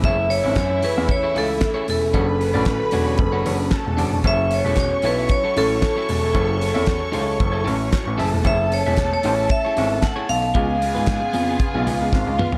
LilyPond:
<<
  \new Staff \with { instrumentName = "Violin section" } { \time 4/4 \key fis \minor \tempo 4 = 114 <e' e''>1 | <b' b''>2. <a' a''>4 | <cis'' cis'''>1~ | <cis'' cis'''>2.~ <cis'' cis'''>8 <a' a''>8~ |
<a' a''>1 | <gis' gis''>2. <eis' eis''>4 | }
  \new Staff \with { instrumentName = "Vibraphone" } { \time 4/4 \key fis \minor e''8 cis''8 cis''8 b'8 cis''8 a'4 a'8~ | a'2~ a'8 r4. | e''8 cis''8 cis''8 b'8 cis''8 a'4 a'8~ | a'2~ a'8 r4. |
e''8 cis''8. cis''8. e''4 fis''8 eis''8~ | eis''2.~ eis''8 r8 | }
  \new Staff \with { instrumentName = "Clean electric guitar" } { \time 4/4 \key fis \minor <e' gis' cis''>8 r16 <e' gis' e''>16 r8 <e' gis' cis''>16 <e' gis' e''>16 r16 <e' gis' cis''>16 <e' gis' cis''>8 r16 <e' gis' cis''>8 r16 | <d' fis' cis''>8 r16 <d' fis' d''>16 r8 <d' fis' cis''>16 <d' fis' cis''>16 r16 <d' fis' cis''>16 <d' fis' cis''>8 r8 <d' fis' d''>8 | <e' a' cis''>8 r16 <e' a' e''>16 r8 <e' a' cis''>16 <e' a' e''>16 r16 <e' a' cis''>16 <e' a' cis''>8 r16 <e' a' cis''>8 r16 | <e' a' cis''>8 r16 <e' a' e''>16 r8 <e' a' cis''>16 <e' a' cis''>16 r16 <e' a' cis''>16 <e' a' cis''>8 r8 <e' gis' e''>8 |
<e' gis' cis''>8 r16 <e' gis' e''>16 r8 <e' gis' cis''>16 <e' gis' e''>16 r16 <e' gis' cis''>16 <e' gis' cis''>8 r16 <e' gis' cis''>8 r16 | <b eis' gis'>8 r16 <b eis' b'>16 r8 <b eis' gis'>16 <b eis' gis'>16 r16 <b eis' gis'>16 <b eis' gis'>8 r8 <b eis' b'>8 | }
  \new Staff \with { instrumentName = "String section" } { \time 4/4 \key fis \minor <e a cis'>1 | <d fis>1 | <e' a'>1~ | <e' a'>2.~ <e' a'>8 a8~ |
a1 | <cis b eis'>1 | }
  \new Staff \with { instrumentName = "Grand piano" } { \clef bass \time 4/4 \key fis \minor fis,,8. gis,,16 fis,8 r16 e,16 r8 cis,8 r8 e,,8 | fis,,8. a,,8 r16 e,,8 fis,,8 fis,,8 r16 e,,16 fis,,16 e,,16 | fis,,8. e,,8 r16 b,,8 r8 a,,8 r8 e,,8 | fis,,8. e,8 r16 cis,8 fis,,8 a,,8 r16 a,,16 fis,,16 e,,16 |
fis,,8. e,,8 r16 a,,8 r8 gis,,8 r8 b,,8 | cis,8. gis,8 r16 eis,8 r16 b,,16 cis,16 cis,16 gis,,16 cis,16 r16 b,,16 | }
  \new DrumStaff \with { instrumentName = "Drums" } \drummode { \time 4/4 <hh bd>8 hho8 <hc hh bd sn>8 hho8 <hh bd>8 hho8 <hc hh bd sn>8 hho8 | <hh bd>8 hho8 <hc hh bd sn>8 hho8 <hh bd>8 hho8 <hc hh bd sn>8 hho8 | <hh bd>8 hho8 <hc hh bd sn>8 hho8 <hh bd>8 hho8 <hc hh bd sn>8 hho8 | <hh bd>8 hho8 <hc hh bd sn>8 hho8 <hh bd>8 hho8 <hc hh bd sn>8 hho8 |
<hh bd>8 hho8 <hc hh bd sn>8 hho8 <hh bd>8 hho8 <hc hh bd sn>8 hho8 | <hh bd>8 hho8 <hc hh bd sn>8 hho8 <hh bd>8 hho8 <bd sn>8 toml16 tomfh16 | }
>>